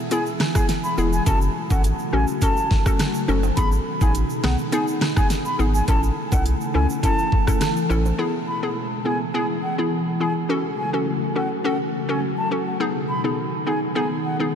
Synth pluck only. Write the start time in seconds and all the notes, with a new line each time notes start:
0.11 B3 E4 G#4
0.55 B3 E4 G#4
0.98 B3 E4 G#4
1.26 C#4 F#4 A4
1.71 C#4 F#4 A4
2.13 C#4 F#4 A4
2.42 C#4 F#4 A4
2.86 C#4 F#4 A4
3.28 C#4 F#4 A4
3.57 B3 D#4 G#4
4.01 B3 D#4 G#4
4.43 B3 D#4 G#4
4.72 B3 D#4 G#4
5.16 B3 D#4 G#4
5.59 B3 D#4 G#4
5.88 C#4 E4 A4
6.32 C#4 E4 A4
6.74 C#4 E4 A4
7.03 C#4 E4 A4
7.47 C#4 E4 A4
7.89 C#4 E4 A4
8.18 B3 E4 G#4
8.63 B3 E4 G#4
9.05 B3 E4 G#4
9.34 B3 E4 G#4
9.78 B3 E4 G#4
10.20 B3 E4 G#4
10.49 C#4 F#4 A4
10.93 C#4 F#4 A4
11.36 C#4 F#4 A4
11.64 C#4 F#4 A4
12.09 C#4 F#4 A4
12.51 C#4 F#4 A4
12.80 B3 D#4 G#4
13.24 B3 D#4 G#4
13.66 B3 D#4 G#4
13.95 B3 D#4 G#4
14.40 B3 D#4 G#4